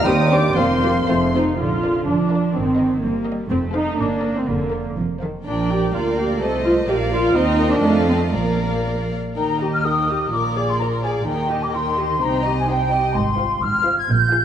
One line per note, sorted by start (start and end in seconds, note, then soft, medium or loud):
0.04 0.51 D#2 medium
0.04 0.13 G3 medium
0.04 0.60 G3 medium
0.04 0.13 C4 soft
0.04 0.30 D#4 medium
0.04 0.14 G4 medium
0.04 0.14 C5 medium
0.04 0.57 C5 medium
0.04 0.31 D#5 medium
0.04 0.58 G5 medium
0.04 0.32 D#6 medium
0.30 0.39 G3 soft
0.30 0.39 C4 soft
0.30 0.57 D4 medium
0.30 0.38 G4 medium
0.30 0.38 C5 medium
0.30 0.57 D5 medium
0.30 0.58 D6 medium
0.56 1.03 F1 medium
0.56 1.03 F2 medium
0.56 0.66 A#3 soft
0.56 1.11 A#3 medium
0.56 1.33 C4 medium
0.56 0.66 C4 medium
0.56 0.64 F4 medium
0.56 0.64 C5 medium
0.56 1.08 C5 medium
0.56 1.35 C5 medium
0.56 1.34 F5 medium
0.56 1.33 C6 medium
0.82 0.91 A#3 soft
0.82 0.91 C4 soft
0.82 0.91 F4 soft
0.82 0.91 G4 medium
0.82 0.90 C5 soft
1.08 1.54 F1 medium
1.08 1.54 F2 medium
1.08 1.17 A3 soft
1.08 1.35 A3 medium
1.08 1.17 C4 soft
1.08 1.16 F4 soft
1.08 1.17 F4 soft
1.08 1.16 C5 soft
1.08 1.20 C5 medium
1.34 1.42 A3 soft
1.34 1.42 C4 soft
1.34 1.59 D#4 medium
1.34 1.43 F4 soft
1.34 1.43 C5 soft
1.59 1.97 A#1 soft
1.59 2.04 D3 soft
1.59 2.06 F4 medium
1.84 2.02 A#4 soft
1.84 2.02 D5 soft
1.84 2.02 F5 soft
2.07 2.45 F1 soft
2.07 2.55 F3 soft
2.07 2.54 D4 medium
2.30 2.48 A#4 soft
2.30 2.49 D5 soft
2.30 2.49 F5 soft
2.55 2.93 G1 medium
2.55 3.03 D#3 soft
2.55 3.03 C4 medium
2.78 2.96 A#4 soft
2.78 2.96 D#5 soft
2.78 2.97 D#5 soft
3.02 3.40 G1 soft
3.02 3.51 G3 medium
3.02 3.26 A#3 soft
3.25 3.44 A#4 soft
3.25 3.44 D#5 soft
3.50 3.88 F1 medium
3.50 3.98 A3 medium
3.50 3.59 C4 medium
3.73 3.98 D#4 medium
3.73 3.91 A4 medium
3.73 3.92 C5 medium
3.73 3.92 F5 medium
3.98 4.37 G1 medium
3.98 4.47 A#3 medium
3.98 4.36 D4 medium
4.22 4.41 A#4 soft
4.22 4.41 D5 soft
4.37 4.48 C4 medium
4.46 4.86 F1 medium
4.46 4.91 D3 soft
4.46 4.97 A#3 soft
4.72 4.90 A#4 medium
4.72 4.90 D5 soft
4.96 5.35 F1 medium
4.96 5.05 F3 soft
5.21 5.29 D#3 soft
5.21 5.40 A4 soft
5.21 5.39 C5 soft
5.21 5.40 F5 soft
5.45 5.90 A#1 soft
5.45 5.91 F3 soft
5.45 5.69 D4 medium
5.45 5.90 A#4 soft
5.45 5.90 D5 soft
5.45 5.91 G5 soft
5.70 5.94 G4 medium
5.93 6.41 D2 soft
5.93 6.41 A#3 soft
5.93 6.18 F4 soft
5.93 6.40 A#4 soft
5.93 6.40 D5 soft
5.93 6.41 F5 soft
6.18 6.41 G4 medium
6.41 6.88 C2 soft
6.41 6.89 A3 soft
6.41 6.65 A4 medium
6.41 6.89 C5 soft
6.41 6.88 D#5 soft
6.65 6.73 F4 medium
6.88 7.34 A#1 medium
6.88 7.35 A#3 medium
6.88 6.96 G4 medium
6.88 7.35 D5 soft
6.88 7.35 F5 soft
7.12 7.35 F4 medium
7.34 7.80 D#2 medium
7.34 7.83 C4 medium
7.34 7.71 D#4 medium
7.34 7.43 C5 medium
7.34 7.80 D#5 medium
7.34 7.80 G5 medium
7.57 7.82 A#4 medium
7.72 8.09 D4 medium
7.81 8.33 F2 medium
7.81 8.33 A3 medium
7.81 8.33 A4 medium
7.81 8.32 D#5 medium
7.81 8.33 F5 medium
8.09 8.17 C4 medium
8.32 9.15 A#1 medium
8.32 9.12 F3 soft
8.32 9.10 A#3 medium
8.32 9.13 A#4 soft
8.32 9.15 D5 soft
8.32 9.14 F5 soft
9.36 10.29 D#2 soft
9.36 9.60 D#4 soft
9.36 9.59 A#4 soft
9.36 9.59 G5 soft
9.36 9.71 A#5 medium
9.61 9.85 G4 soft
9.61 9.85 D#5 soft
9.74 9.85 F6 medium
9.85 10.09 D#4 soft
9.85 10.09 A#4 soft
9.85 10.09 G5 soft
9.85 10.33 D#6 medium
10.09 10.33 G4 soft
10.09 10.33 D#5 soft
10.32 11.26 A#1 soft
10.32 11.26 A#2 soft
10.32 10.55 F4 soft
10.32 10.55 A#4 soft
10.32 10.56 D5 soft
10.32 10.68 D6 medium
10.57 10.80 G#4 soft
10.57 10.80 D5 soft
10.57 10.81 F5 soft
10.69 10.81 C6 medium
10.80 11.04 F4 soft
10.80 11.04 A#4 soft
10.80 11.04 D5 soft
10.80 10.86 A#5 medium
11.04 11.27 G#4 soft
11.04 11.28 D5 soft
11.04 11.27 F5 soft
11.04 11.10 G#5 medium
11.27 12.20 D#2 soft
11.27 12.21 D#3 soft
11.27 11.49 D#4 soft
11.27 11.50 A#4 soft
11.27 11.62 G5 medium
11.27 11.49 G5 soft
11.51 11.75 G4 soft
11.51 11.75 D#5 soft
11.63 11.75 D6 medium
11.74 11.98 D#4 soft
11.74 11.98 A#4 soft
11.74 11.99 G5 soft
11.74 12.23 C6 medium
11.97 12.21 G4 soft
11.97 12.22 G4 soft
11.97 12.23 D#5 soft
12.20 13.16 C2 medium
12.20 13.16 C3 soft
12.20 12.45 D#4 soft
12.20 12.43 C5 soft
12.20 12.44 G5 soft
12.20 12.58 A#5 medium
12.44 12.70 G4 soft
12.44 12.68 D#5 soft
12.44 12.69 D#5 soft
12.59 12.70 G#5 medium
12.68 12.92 D#4 soft
12.68 12.92 C5 soft
12.68 12.93 G5 soft
12.68 13.15 G5 medium
12.90 13.16 G4 soft
12.90 13.15 D#5 soft
12.90 13.16 D#5 soft
13.15 13.52 G#1 medium
13.15 13.52 G#2 medium
13.15 13.62 C6 medium
13.37 13.55 F4 soft
13.37 13.55 C5 medium
13.37 13.56 F5 medium
13.61 13.98 G#1 medium
13.61 13.99 G#2 medium
13.61 13.97 F6 medium
13.84 14.02 F4 soft
13.84 14.02 C5 medium
13.84 14.03 F5 medium
13.98 14.09 G#6 medium
14.09 14.45 A#1 medium
14.09 14.45 A#2 medium
14.09 14.45 G6 medium
14.32 14.45 F4 medium
14.32 14.45 G#4 medium
14.32 14.45 F5 medium